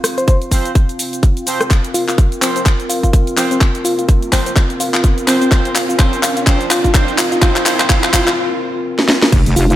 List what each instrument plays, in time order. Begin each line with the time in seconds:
Already playing: analog synth pad C4 F4 F5
0.04 cross-stick, open hi-hat, shaker
0.18 soft synth lead C5, closed hi-hat, shaker
0.28 soft synth lead C5, kick, closed hi-hat, shaker
0.42 closed hi-hat, shaker
0.51 horn section F3 C4 C5, kick, open hi-hat, shaker
0.65 closed hi-hat, shaker
0.75 kick, closed hi-hat, shaker
0.89 closed hi-hat, shaker
0.99 open hi-hat, shaker
1.13 closed hi-hat, shaker
1.23 kick, closed hi-hat, shaker
1.37 closed hi-hat, shaker
1.47 horn section F3 C4 C5, open hi-hat, shaker
1.61 cross-stick, closed hi-hat, shaker
1.71 analog synth pad A#4, kick, clap, closed hi-hat, riser, shaker
1.84 closed hi-hat, shaker
1.94 soft synth lead F4, open hi-hat, shaker
2.08 soft synth lead F4, clap, shaker
2.18 kick, closed hi-hat, shaker
2.32 closed hi-hat, shaker
2.42 horn section F3 C4 C5, soft synth lead C4, clap, open hi-hat, shaker
2.56 soft synth lead C4, closed hi-hat, shaker
2.66 kick, clap, closed hi-hat, shaker
2.80 closed hi-hat, shaker
2.89 soft synth lead F4, open hi-hat, shaker
3.03 soft synth lead F4, kick, closed hi-hat, shaker
3.13 kick, closed hi-hat, shaker
3.27 closed hi-hat, shaker
3.37 horn section F3 C4 C5, soft synth lead C4, clap, open hi-hat, shaker
3.51 soft synth lead C4, closed hi-hat, shaker
3.61 kick, clap, closed hi-hat, shaker
3.75 closed hi-hat, shaker
3.85 soft synth lead F4, open hi-hat, shaker
3.99 soft synth lead F4, closed hi-hat, shaker
4.09 kick, closed hi-hat, shaker
4.22 closed hi-hat, shaker
4.32 horn section F3 C4 C5, soft synth lead C4, kick, clap, open hi-hat, shaker
4.46 soft synth lead C4, closed hi-hat, shaker
4.56 kick, clap, closed hi-hat, shaker
4.70 closed hi-hat, shaker
4.80 soft synth lead F4, open hi-hat, shaker
4.94 soft synth lead F4, clap, closed hi-hat, shaker
5.04 kick, closed hi-hat, shaker
5.18 closed hi-hat, shaker
5.28 horn section F3 C4 C5, soft synth lead C4, clap, open hi-hat, shaker
5.41 soft synth lead C4, closed hi-hat, shaker
5.51 horn section F3 C4 C5, kick, clap, closed hi-hat, shaker
5.65 closed hi-hat, shaker
5.75 soft synth lead F4, clap, open hi-hat, shaker
5.89 soft synth lead F4, shaker
5.99 horn section F3 C4 C5, kick, clap, closed hi-hat, shaker
6.13 closed hi-hat, shaker
6.23 soft synth lead F4, clap, open hi-hat, shaker
6.37 soft synth lead F4, closed hi-hat, shaker
6.47 horn section F3 C4 C5, kick, clap, closed hi-hat, shaker
6.61 closed hi-hat, shaker
6.70 soft synth lead F4, clap, open hi-hat, shaker
6.84 soft synth lead F4, kick, closed hi-hat, shaker
6.94 horn section F3 C4 C5, kick, clap, closed hi-hat, shaker
7.08 closed hi-hat, shaker
7.18 soft synth lead F4, clap, open hi-hat, shaker
7.32 soft synth lead F4, closed hi-hat, shaker
7.42 horn section F3 C4 C5, soft synth lead F4, kick, clap, closed hi-hat, shaker
7.56 soft synth lead F4, clap, closed hi-hat, shaker
7.66 horn section F3 C4 C5, soft synth lead F4, clap, open hi-hat, shaker
7.80 soft synth lead F4, clap, closed hi-hat, shaker
7.90 horn section F3 C4 C5, soft synth lead F4, kick, clap, closed hi-hat, shaker
8.03 soft synth lead F4, clap, closed hi-hat, shaker
8.13 horn section F3 C4 C5, soft synth lead F4, kick, clap, open hi-hat, shaker
8.27 soft synth lead F4, clap, closed hi-hat, shaker
8.99 snare
9.09 snare
9.23 snare
9.32 wobble bass F1, analog synth pad C4 F4 F5, kick, closed hi-hat, crash, impact, shaker
9.46 wobble bass F1, closed hi-hat, shaker
9.56 wobble bass F1, soft synth lead F4, open hi-hat, shaker
9.70 soft synth lead F4, closed hi-hat, shaker